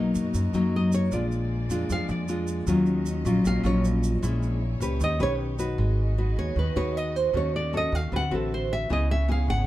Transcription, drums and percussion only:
0.15 shaker
0.34 shaker
0.54 shaker
0.92 shaker
1.12 shaker
1.32 shaker
1.70 shaker
1.90 shaker
2.09 shaker
2.28 shaker
2.47 shaker
2.67 shaker
2.86 shaker
3.06 shaker
3.26 shaker
3.45 shaker
3.65 shaker
3.85 shaker
4.04 shaker
4.23 shaker
4.43 shaker
4.82 shaker
5.01 shaker
5.20 shaker
5.59 shaker

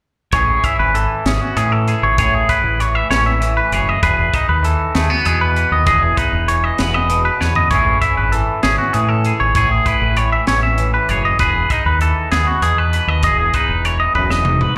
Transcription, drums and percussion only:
0.32 kick, closed hi-hat
0.64 kick, closed hi-hat
0.95 closed hi-hat
1.26 snare, closed hi-hat
1.57 closed hi-hat
1.88 closed hi-hat
2.18 kick, closed hi-hat
2.49 kick, closed hi-hat
2.80 closed hi-hat
3.11 snare, closed hi-hat
3.42 closed hi-hat
3.72 closed hi-hat
4.03 kick, closed hi-hat
4.34 kick, closed hi-hat
4.64 closed hi-hat
4.95 snare, closed hi-hat
5.25 closed hi-hat
5.56 closed hi-hat
5.87 kick, closed hi-hat
6.17 kick, closed hi-hat
6.48 closed hi-hat
6.78 snare, closed hi-hat
7.10 closed hi-hat
7.41 snare
7.55 floor tom
7.71 kick, closed hi-hat
8.02 kick, closed hi-hat
8.33 closed hi-hat
8.63 snare, closed hi-hat
8.94 closed hi-hat
9.25 closed hi-hat
9.55 kick, closed hi-hat
9.86 kick, closed hi-hat
10.17 closed hi-hat
10.47 snare, closed hi-hat
10.78 closed hi-hat
11.09 closed hi-hat
11.39 kick, closed hi-hat
11.70 kick, closed hi-hat
12.01 closed hi-hat
12.32 snare, closed hi-hat
12.62 closed hi-hat
12.93 closed hi-hat
13.23 kick, closed hi-hat
13.54 kick, closed hi-hat
13.85 closed hi-hat
14.15 kick
14.31 snare
14.45 mid tom
14.61 mid tom

